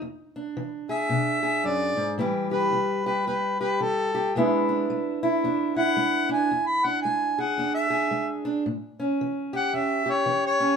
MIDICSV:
0, 0, Header, 1, 3, 480
1, 0, Start_track
1, 0, Tempo, 538600
1, 30, Time_signature, 4, 2, 24, 8
1, 9594, End_track
2, 0, Start_track
2, 0, Title_t, "Harmonica"
2, 0, Program_c, 0, 22
2, 809, Note_on_c, 0, 76, 73
2, 1477, Note_on_c, 0, 74, 71
2, 1490, Note_off_c, 0, 76, 0
2, 1940, Note_off_c, 0, 74, 0
2, 2252, Note_on_c, 0, 71, 72
2, 2713, Note_off_c, 0, 71, 0
2, 2728, Note_on_c, 0, 71, 65
2, 2906, Note_off_c, 0, 71, 0
2, 2911, Note_on_c, 0, 71, 62
2, 3193, Note_off_c, 0, 71, 0
2, 3208, Note_on_c, 0, 71, 72
2, 3398, Note_on_c, 0, 69, 83
2, 3412, Note_off_c, 0, 71, 0
2, 3862, Note_off_c, 0, 69, 0
2, 5145, Note_on_c, 0, 78, 95
2, 5615, Note_off_c, 0, 78, 0
2, 5628, Note_on_c, 0, 80, 78
2, 5940, Note_on_c, 0, 83, 73
2, 5954, Note_off_c, 0, 80, 0
2, 6107, Note_on_c, 0, 78, 84
2, 6120, Note_off_c, 0, 83, 0
2, 6248, Note_off_c, 0, 78, 0
2, 6253, Note_on_c, 0, 80, 68
2, 6592, Note_on_c, 0, 78, 73
2, 6605, Note_off_c, 0, 80, 0
2, 6895, Note_off_c, 0, 78, 0
2, 6901, Note_on_c, 0, 76, 79
2, 7373, Note_off_c, 0, 76, 0
2, 8523, Note_on_c, 0, 78, 70
2, 8683, Note_on_c, 0, 76, 80
2, 8696, Note_off_c, 0, 78, 0
2, 9002, Note_on_c, 0, 73, 78
2, 9016, Note_off_c, 0, 76, 0
2, 9307, Note_off_c, 0, 73, 0
2, 9321, Note_on_c, 0, 73, 76
2, 9594, Note_off_c, 0, 73, 0
2, 9594, End_track
3, 0, Start_track
3, 0, Title_t, "Steel-string acoustic guitar"
3, 0, Program_c, 1, 25
3, 16, Note_on_c, 1, 40, 71
3, 320, Note_on_c, 1, 62, 49
3, 465, Note_off_c, 1, 40, 0
3, 506, Note_on_c, 1, 52, 66
3, 795, Note_on_c, 1, 68, 65
3, 950, Note_off_c, 1, 52, 0
3, 974, Note_off_c, 1, 62, 0
3, 975, Note_on_c, 1, 47, 58
3, 984, Note_on_c, 1, 62, 53
3, 1261, Note_off_c, 1, 68, 0
3, 1271, Note_on_c, 1, 68, 60
3, 1425, Note_off_c, 1, 47, 0
3, 1460, Note_on_c, 1, 42, 61
3, 1748, Note_off_c, 1, 42, 0
3, 1751, Note_on_c, 1, 44, 60
3, 1925, Note_off_c, 1, 68, 0
3, 1926, Note_off_c, 1, 62, 0
3, 1940, Note_on_c, 1, 45, 70
3, 1947, Note_off_c, 1, 44, 0
3, 1949, Note_on_c, 1, 52, 55
3, 1954, Note_on_c, 1, 55, 53
3, 1965, Note_on_c, 1, 67, 62
3, 2229, Note_off_c, 1, 67, 0
3, 2239, Note_on_c, 1, 67, 53
3, 2389, Note_off_c, 1, 45, 0
3, 2425, Note_off_c, 1, 52, 0
3, 2429, Note_on_c, 1, 52, 66
3, 2719, Note_off_c, 1, 67, 0
3, 2729, Note_on_c, 1, 67, 66
3, 2873, Note_off_c, 1, 52, 0
3, 2909, Note_off_c, 1, 67, 0
3, 2914, Note_on_c, 1, 40, 60
3, 2919, Note_on_c, 1, 67, 60
3, 3203, Note_off_c, 1, 67, 0
3, 3214, Note_on_c, 1, 67, 61
3, 3356, Note_off_c, 1, 40, 0
3, 3391, Note_on_c, 1, 52, 65
3, 3684, Note_off_c, 1, 67, 0
3, 3695, Note_on_c, 1, 67, 66
3, 3834, Note_off_c, 1, 52, 0
3, 3857, Note_off_c, 1, 67, 0
3, 3875, Note_off_c, 1, 55, 0
3, 3878, Note_on_c, 1, 40, 68
3, 3887, Note_on_c, 1, 56, 61
3, 3894, Note_on_c, 1, 59, 60
3, 3894, Note_on_c, 1, 62, 58
3, 3902, Note_on_c, 1, 64, 61
3, 4174, Note_off_c, 1, 62, 0
3, 4177, Note_on_c, 1, 62, 52
3, 4318, Note_off_c, 1, 40, 0
3, 4363, Note_off_c, 1, 56, 0
3, 4367, Note_on_c, 1, 56, 64
3, 4656, Note_off_c, 1, 64, 0
3, 4660, Note_on_c, 1, 64, 65
3, 4803, Note_off_c, 1, 56, 0
3, 4847, Note_on_c, 1, 40, 60
3, 4851, Note_off_c, 1, 62, 0
3, 4854, Note_on_c, 1, 62, 55
3, 5133, Note_off_c, 1, 64, 0
3, 5137, Note_on_c, 1, 64, 58
3, 5283, Note_off_c, 1, 40, 0
3, 5316, Note_on_c, 1, 56, 60
3, 5597, Note_off_c, 1, 62, 0
3, 5608, Note_on_c, 1, 62, 57
3, 5757, Note_off_c, 1, 56, 0
3, 5774, Note_off_c, 1, 62, 0
3, 5782, Note_off_c, 1, 59, 0
3, 5806, Note_on_c, 1, 40, 73
3, 6100, Note_on_c, 1, 62, 47
3, 6242, Note_off_c, 1, 40, 0
3, 6283, Note_on_c, 1, 56, 63
3, 6577, Note_off_c, 1, 64, 0
3, 6581, Note_on_c, 1, 68, 60
3, 6721, Note_off_c, 1, 56, 0
3, 6752, Note_on_c, 1, 40, 51
3, 6754, Note_off_c, 1, 62, 0
3, 6765, Note_on_c, 1, 62, 56
3, 7032, Note_off_c, 1, 68, 0
3, 7042, Note_on_c, 1, 68, 61
3, 7195, Note_off_c, 1, 40, 0
3, 7228, Note_on_c, 1, 56, 53
3, 7519, Note_off_c, 1, 62, 0
3, 7530, Note_on_c, 1, 62, 58
3, 7672, Note_off_c, 1, 56, 0
3, 7690, Note_off_c, 1, 68, 0
3, 7694, Note_off_c, 1, 62, 0
3, 7717, Note_on_c, 1, 45, 73
3, 8017, Note_on_c, 1, 61, 46
3, 8157, Note_off_c, 1, 45, 0
3, 8209, Note_on_c, 1, 52, 61
3, 8495, Note_on_c, 1, 67, 59
3, 8642, Note_off_c, 1, 52, 0
3, 8668, Note_off_c, 1, 61, 0
3, 8673, Note_on_c, 1, 40, 57
3, 8678, Note_on_c, 1, 61, 52
3, 8954, Note_off_c, 1, 67, 0
3, 8964, Note_on_c, 1, 67, 60
3, 9113, Note_off_c, 1, 40, 0
3, 9143, Note_on_c, 1, 52, 64
3, 9437, Note_off_c, 1, 61, 0
3, 9448, Note_on_c, 1, 61, 61
3, 9588, Note_off_c, 1, 52, 0
3, 9594, Note_off_c, 1, 61, 0
3, 9594, Note_off_c, 1, 67, 0
3, 9594, End_track
0, 0, End_of_file